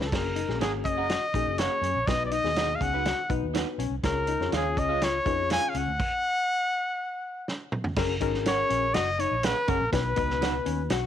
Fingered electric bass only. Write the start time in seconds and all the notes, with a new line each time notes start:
0.01 C#2
0.12 F#1
0.49 A#1
0.60 G#1
0.85 F#1
1.34 A#1
1.46 F#1
1.81 F#2
1.95 A#1
2.07 B1
2.44 D#2
2.81 C#2
3.30 B1
3.41 D#2
3.78 B1
3.90 C2
4.04 C#2
4.40 F2
4.53 D#2
4.77 C#2
5.26 F2
5.75 C#2
5.87 D2
7.96 F#1
8.21 G#1
8.70 A#1
8.94 F#1
9.31 A#1
9.68 F#1
9.80 A#1
9.92 B1
10.66 D#2
10.90 B1